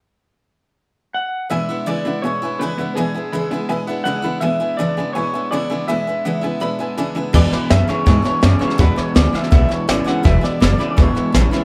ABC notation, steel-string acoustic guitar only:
X:1
M:4/4
L:1/8
Q:1/4=165
K:Emix
V:1 name="Steel-string acoustic guitar"
z8 | [E,,E,G,B,DE] [G,B,DE] [E,,E,G,B,DE] [G,B,DE] [G,B,DE] [G,B,DE] [E,,E,G,B,DE] [G,B,DE] | [E,,E,G,B,DE] [G,B,DE] [E,,E,G,B,DE] [G,B,DE] [G,B,DE] [G,B,DE] [E,,E,G,B,DE] [G,B,DE] | [E,,E,G,B,DE] [G,B,DE] [E,,E,G,B,DE] [G,B,DE] [G,B,DE] [G,B,DE] [E,,E,G,B,DE] [G,B,DE] |
[E,,E,G,B,DE] [G,B,DE] [E,,E,G,B,DE] [G,B,DE] [G,B,DE] [G,B,DE] [E,,E,G,B,DE] [G,B,DE] | [E,,E,G,B,DE] [G,B,DE] [G,B,DE] [G,B,DE] [E,,E,G,B,DE] [G,B,DE] [G,B,DE] [G,B,DE] | [E,,E,G,B,DE] [G,B,DE] [G,B,DE] [G,B,DE] [E,,E,G,B,DE] [G,B,DE] [G,B,DE] [G,B,DE] | [E,,E,G,B,DE] [G,B,DE] [G,E] [G,B,DE] [E,,E,G,B,DE] [G,B,DE] [G,B,DE] [G,B,DE] |]